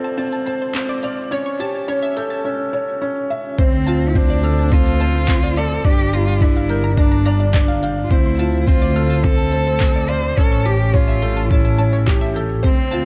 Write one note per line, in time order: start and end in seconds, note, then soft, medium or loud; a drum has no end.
0.00 1.29 D2 loud
0.00 0.17 C4 loud
0.00 1.33 F4 medium
0.00 0.17 A4 medium
0.04 0.14 A5 medium
0.17 0.45 C4 loud
0.17 0.28 A5 loud
0.32 0.42 A5 medium
0.32 closed hi-hat soft
0.46 0.73 C5 medium
0.46 0.51 A5 loud
0.46 closed hi-hat medium
0.62 0.68 C5 medium
0.74 1.02 C4 medium
0.74 0.85 C5 medium
0.74 clap medium
0.74 closed hi-hat soft
0.89 0.93 D5 loud
1.03 1.30 D5 medium
1.03 1.10 F6 medium
1.03 closed hi-hat medium
1.31 2.45 A1 medium
1.31 1.58 C#4 loud
1.31 1.41 C#5 loud
1.31 closed hi-hat soft
1.46 1.50 C#6 medium
1.60 1.87 G4 medium
1.60 1.64 A5 loud
1.60 closed hi-hat medium
1.88 2.15 C#4 loud
1.88 1.98 C#5 medium
1.88 closed hi-hat soft
2.03 2.06 E5 loud
2.16 2.44 A4 medium
2.16 2.23 G6 medium
2.16 closed hi-hat medium
2.30 2.40 A5 medium
2.45 2.61 C#4 medium
2.73 3.00 C#5 medium
3.02 3.29 C#4 loud
3.30 3.57 E5 medium
3.58 5.82 D2 medium
3.58 3.85 C4 medium
3.58 4.11 C4 medium
3.58 3.68 C5 loud
3.58 kick loud
3.58 closed hi-hat soft
3.73 3.76 C6 medium
3.87 4.14 F4 medium
3.87 3.91 A5 loud
3.87 closed hi-hat medium
4.09 4.18 E4 medium
4.15 4.42 C4 loud
4.15 4.74 D4 medium
4.15 4.25 C5 medium
4.15 kick loud
4.15 closed hi-hat soft
4.30 4.33 D5 loud
4.43 4.70 A4 medium
4.43 4.50 F6 medium
4.43 closed hi-hat medium
4.59 4.68 A5 medium
4.71 4.99 C4 medium
4.71 5.59 F4 loud
4.71 4.82 A5 loud
4.71 kick loud
4.86 4.96 A5 medium
4.86 closed hi-hat soft
5.00 5.27 C5 medium
5.00 5.04 A5 loud
5.00 closed hi-hat medium
5.15 5.21 C5 medium
5.28 5.55 C4 medium
5.28 5.38 C5 medium
5.28 kick loud
5.28 clap medium
5.28 closed hi-hat soft
5.43 5.47 D5 loud
5.56 5.86 A4 loud
5.56 5.84 D5 medium
5.56 5.63 F6 medium
5.56 closed hi-hat medium
5.85 8.09 G1 loud
5.85 6.12 D4 loud
5.85 6.15 G4 loud
5.85 5.94 D5 medium
5.85 kick loud
5.85 closed hi-hat soft
5.99 6.03 D6 medium
6.13 6.43 F4 loud
6.13 6.40 G4 medium
6.13 6.17 A#5 loud
6.13 closed hi-hat medium
6.41 6.68 D4 medium
6.41 6.96 E4 loud
6.41 6.51 D5 medium
6.41 kick loud
6.41 closed hi-hat soft
6.57 6.60 F5 loud
6.69 6.97 A#4 medium
6.69 6.76 G6 medium
6.69 closed hi-hat medium
6.84 6.93 A#5 medium
6.97 7.78 D4 medium
6.97 7.14 D4 medium
6.97 7.07 A#5 loud
6.97 kick loud
7.12 7.21 A#5 medium
7.12 closed hi-hat soft
7.26 7.53 D5 medium
7.26 7.30 A#5 medium
7.26 closed hi-hat medium
7.40 7.47 D5 medium
7.54 7.81 D4 loud
7.54 7.64 D5 medium
7.54 kick loud
7.54 clap medium
7.54 closed hi-hat soft
7.68 7.72 F5 loud
7.82 8.10 F5 medium
7.82 7.89 G6 medium
7.82 closed hi-hat medium
8.04 8.11 F4 medium
8.10 10.35 D2 loud
8.10 8.38 C4 medium
8.10 8.68 E4 medium
8.10 8.21 C5 loud
8.10 kick loud
8.10 closed hi-hat soft
8.26 8.29 C6 medium
8.39 8.66 F4 medium
8.39 8.43 A5 loud
8.39 closed hi-hat medium
8.67 8.95 C4 loud
8.67 9.25 F4 medium
8.67 8.78 C5 medium
8.67 kick loud
8.67 closed hi-hat soft
8.82 8.86 D5 loud
8.96 9.23 A4 medium
8.96 9.02 F6 medium
8.96 closed hi-hat medium
9.10 9.19 A5 medium
9.23 9.51 C4 medium
9.23 10.10 A4 loud
9.23 9.34 A5 loud
9.23 kick loud
9.38 9.48 A5 medium
9.38 closed hi-hat soft
9.52 9.79 C5 medium
9.52 9.56 A5 loud
9.52 closed hi-hat medium
9.67 9.73 C5 medium
9.80 10.08 C4 medium
9.80 9.90 C5 medium
9.80 kick loud
9.80 clap medium
9.80 closed hi-hat soft
9.96 9.99 D5 medium
10.08 10.39 C5 loud
10.08 10.36 D5 medium
10.08 10.16 F6 medium
10.08 closed hi-hat medium
10.37 12.61 A1 loud
10.37 10.64 C#4 loud
10.37 10.67 A4 loud
10.37 10.47 C#5 loud
10.37 kick loud
10.37 closed hi-hat soft
10.52 10.55 C#6 medium
10.65 10.96 G4 loud
10.65 10.93 G4 medium
10.65 10.69 A5 loud
10.65 closed hi-hat medium
10.94 11.21 C#4 loud
10.94 11.51 F4 loud
10.94 11.03 C#5 medium
10.94 kick loud
10.94 closed hi-hat soft
11.08 11.12 E5 loud
11.22 11.49 A4 medium
11.22 11.29 G6 medium
11.22 closed hi-hat medium
11.37 11.46 A5 medium
11.50 11.67 C#4 medium
11.50 12.32 E4 medium
11.50 11.60 A5 loud
11.50 kick loud
11.65 11.74 A5 medium
11.65 closed hi-hat soft
11.78 12.06 C#4 medium
11.78 11.83 A5 loud
11.78 closed hi-hat medium
11.93 11.99 C#5 medium
12.07 12.34 G4 medium
12.07 12.16 C#5 medium
12.07 kick loud
12.07 clap medium
12.07 closed hi-hat soft
12.21 12.25 E5 loud
12.34 12.63 A4 medium
12.34 12.41 G6 medium
12.34 closed hi-hat medium
12.63 13.05 D2 loud
12.63 12.91 C4 medium
12.63 13.05 C4 loud
12.63 12.73 C5 loud
12.63 kick medium
12.63 closed hi-hat soft
12.77 12.82 C6 medium
12.91 13.05 F4 medium
12.91 12.96 A5 loud
12.91 closed hi-hat medium